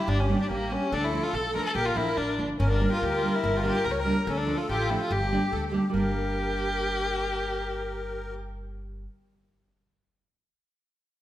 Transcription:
0.00 0.10 E4 medium
0.00 0.88 G4 medium
0.08 0.33 G1 loud
0.08 0.21 D4 loud
0.19 0.40 C#4 medium
0.28 0.39 G3 medium
0.28 0.40 A#3 medium
0.28 0.40 D4 medium
0.41 0.50 D4 medium
0.50 0.75 A1 medium
0.50 0.74 A#3 medium
0.70 0.81 G3 medium
0.70 0.82 A#3 medium
0.70 0.95 C#4 loud
0.70 0.82 D4 medium
0.92 1.17 D2 loud
0.92 1.05 D4 loud
0.92 1.78 A4 loud
1.04 1.25 E4 medium
1.12 1.23 F3 medium
1.12 1.23 A3 medium
1.12 1.24 D4 medium
1.23 1.35 F4 loud
1.33 1.59 B1 medium
1.33 1.55 A4 medium
1.54 1.65 F3 medium
1.54 1.65 A3 medium
1.54 1.66 D4 medium
1.54 1.65 A#4 loud
1.65 1.75 A4 loud
1.75 1.88 A#1 loud
1.75 1.87 G4 loud
1.75 2.35 A#4 loud
1.85 1.97 F4 medium
1.95 2.15 A#1 medium
1.95 2.07 F3 medium
1.95 2.07 A#3 medium
1.95 2.07 D4 medium
1.95 2.18 E4 loud
2.17 2.36 A1 medium
2.17 2.49 D4 medium
2.38 2.58 G1 medium
2.38 2.49 F3 medium
2.38 2.49 A#3 medium
2.38 2.50 D4 medium
2.59 2.85 G1 loud
2.59 2.69 C#4 medium
2.59 4.32 A#4 loud
2.71 2.88 D4 medium
2.80 2.91 G3 medium
2.80 2.91 A#3 medium
2.80 2.92 D4 medium
2.89 3.03 F4 medium
2.89 2.93 G4 medium
3.02 3.27 D2 medium
3.02 3.15 G4 medium
3.14 3.36 F4 medium
3.23 3.33 G3 medium
3.23 3.33 A#3 medium
3.23 3.34 D4 medium
3.35 3.58 E4 medium
3.44 3.69 G1 loud
3.56 3.60 F4 medium
3.56 3.66 F4 medium
3.56 3.58 G4 medium
3.63 3.74 G3 medium
3.63 3.75 A#3 medium
3.63 3.75 D4 medium
3.63 3.86 G4 loud
3.85 4.10 C#2 medium
3.85 3.93 A#4 loud
3.91 4.01 C#5 medium
4.00 4.17 A#4 loud
4.05 4.16 G3 medium
4.05 4.16 A#3 medium
4.05 4.17 D4 medium
4.27 4.52 D2 loud
4.27 4.39 C#4 medium
4.27 5.13 A4 loud
4.37 4.59 D4 medium
4.46 4.58 F3 medium
4.46 4.58 A3 medium
4.46 4.59 D4 medium
4.58 4.68 F4 medium
4.69 4.94 A1 loud
4.69 4.74 F4 medium
4.69 4.72 G4 loud
4.69 4.80 G4 medium
4.79 4.91 F4 medium
4.89 5.00 F3 medium
4.89 5.00 A3 medium
4.89 5.00 D4 medium
4.89 5.00 E4 medium
5.01 5.13 F4 medium
5.10 5.35 G1 loud
5.10 5.53 G4 medium
5.10 5.73 G4 medium
5.31 5.42 G3 medium
5.31 5.42 A#3 medium
5.31 5.42 D4 medium
5.52 5.77 D2 loud
5.52 5.65 A4 loud
5.66 5.72 A4 medium
5.72 5.83 G3 medium
5.72 5.83 A#3 medium
5.72 5.84 D4 medium
5.72 5.92 G4 medium
5.90 9.03 G3 medium
5.90 9.05 A#3 medium
5.90 8.35 A#4 medium
5.94 9.05 G1 loud
5.94 9.07 D4 medium
5.94 8.36 G4 loud

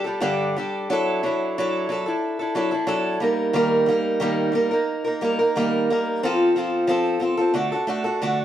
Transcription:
0.04 0.21 G3 soft
0.04 0.20 D4 soft
0.04 0.20 G4 soft
0.04 0.21 A4 medium
0.21 0.56 G2 medium
0.21 0.56 D3 medium
0.21 0.55 G3 medium
0.21 0.56 D4 medium
0.21 0.56 G4 medium
0.21 0.57 A4 medium
0.57 0.89 G3 medium
0.57 0.89 D4 medium
0.57 0.91 G4 medium
0.57 0.92 A4 medium
0.90 1.22 F#3 medium
0.90 1.22 D4 medium
0.90 1.24 E4 medium
0.90 1.25 A4 medium
1.23 1.57 F#3 medium
1.23 1.57 D4 medium
1.23 1.58 E4 medium
1.23 1.58 A4 medium
1.58 1.88 F#3 medium
1.58 1.89 D4 medium
1.58 1.90 E4 medium
1.58 1.91 A4 medium
1.89 2.06 F#3 medium
1.89 2.07 D4 medium
1.89 2.06 E4 medium
1.89 2.05 A4 medium
2.06 2.41 D4 soft
2.06 2.40 E4 medium
2.06 2.38 A4 soft
2.39 2.55 D4 soft
2.39 2.56 E4 medium
2.39 2.56 A4 medium
2.55 2.72 F#3 medium
2.55 2.73 D4 medium
2.55 2.71 E4 medium
2.55 2.70 A4 medium
2.71 2.86 D4 soft
2.71 2.87 E4 medium
2.71 2.87 A4 medium
2.87 3.20 F#3 medium
2.87 3.21 D4 medium
2.87 3.22 E4 medium
2.87 3.22 A4 medium
3.20 3.53 G3 medium
3.20 3.54 A#3 medium
3.20 3.54 D#4 medium
3.20 3.55 A#4 medium
3.53 3.88 D#3 medium
3.53 3.85 G3 medium
3.53 3.87 A#3 medium
3.53 3.87 D#4 medium
3.53 3.89 A#4 medium
3.86 4.20 G3 medium
3.86 4.21 A#3 medium
3.86 4.20 D#4 medium
3.86 4.21 A#4 medium
4.20 4.54 D#3 medium
4.20 4.51 G3 medium
4.20 4.52 A#3 medium
4.20 4.54 D#4 medium
4.20 4.54 A#4 medium
4.52 4.70 G3 medium
4.52 4.71 A#3 medium
4.52 4.72 D#4 medium
4.52 4.70 A#4 medium
4.71 5.06 A#3 soft
4.71 5.06 D#4 medium
4.71 5.03 A#4 medium
5.05 5.21 A#3 soft
5.05 5.21 D#4 medium
5.05 5.22 A#4 medium
5.21 5.38 G3 medium
5.21 5.39 A#3 medium
5.21 5.39 D#4 medium
5.21 5.38 A#4 medium
5.39 5.56 A#3 soft
5.39 5.55 D#4 medium
5.39 5.56 A#4 medium
5.56 5.89 D#3 medium
5.56 5.89 G3 medium
5.56 5.89 A#3 medium
5.56 5.89 D#4 medium
5.56 5.90 A#4 medium
5.90 6.23 G3 medium
5.90 6.23 A#3 medium
5.90 6.23 D#4 medium
5.90 6.24 A#4 medium
6.23 6.55 F3 medium
6.23 6.56 C4 medium
6.23 6.57 F4 medium
6.23 6.57 A4 medium
6.56 6.86 F3 medium
6.56 6.88 C4 medium
6.56 6.88 F4 medium
6.56 6.89 A4 medium
6.87 7.18 F3 medium
6.87 7.20 C4 medium
6.87 7.21 F4 medium
6.87 7.22 A4 medium
7.20 7.38 F3 medium
7.20 7.38 C4 medium
7.20 7.38 F4 medium
7.20 7.36 A4 medium
7.37 7.54 C4 soft
7.37 7.55 F4 soft
7.37 7.54 A4 medium
7.54 7.71 D3 medium
7.54 7.71 A3 medium
7.54 7.72 D4 medium
7.54 7.72 F#4 medium
7.54 7.71 A4 medium
7.72 7.87 D4 soft
7.72 7.88 F#4 medium
7.72 7.88 A4 medium
7.87 8.04 A3 medium
7.87 8.05 D4 medium
7.87 8.04 F#4 medium
7.87 8.03 A4 medium
8.04 8.21 D4 soft
8.04 8.22 F#4 medium
8.04 8.21 A4 medium
8.22 8.45 D3 medium
8.22 8.45 A3 medium
8.22 8.45 D4 medium
8.22 8.45 F#4 medium
8.22 8.45 A4 medium

